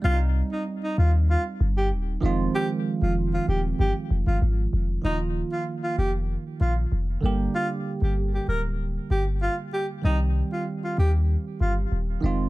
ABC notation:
X:1
M:4/4
L:1/16
Q:1/4=96
K:Cm
V:1 name="Alto saxophone"
F z2 E z E F z F z2 G z4 | G z2 F z F G z G z2 F z4 | E z2 F z F G z3 F z4 z | F z2 G z G B z3 G z F z G z |
E z2 F z F G z3 F z4 z |]
V:2 name="Tine electric piano"
[G,CDE]12- [G,CDE]2 [E,F,A,CF]2- | [E,F,A,CF]12- [E,F,A,CF]2 z2 | [E,F,B,F]12- [E,F,B,F]2 [D,G,B,G]2- | [D,G,B,G]12- [D,G,B,G]2 z2 |
[E,G,CG]12- [E,G,CG]2 [E,A,CF]2 |]
V:3 name="808-style bass" clef=bass
C,,3 z3 E,,3 z G,,,2 E,,,2 F,,,2 | z3 F,,,3 E,,,2 G,,, z F,,, G,,, A,,,2 F,,,2 | E,,,3 z3 F,,,3 z B,,,2 F,,,2 G,,,2 | z3 G,,,3 D,,,4 G,,,3 z3 |
C,,3 z3 E,,3 z G,,,2 E,,,2 F,,,2 |]